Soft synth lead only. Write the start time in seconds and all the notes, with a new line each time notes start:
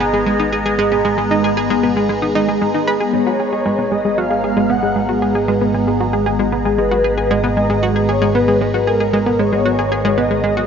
3.13 C#5
3.92 D#5
4.18 F5
4.70 F#5
6.79 B4
7.31 D#5
8.09 C#5
8.35 B4
8.87 A#4
9.40 C#5
10.18 D#5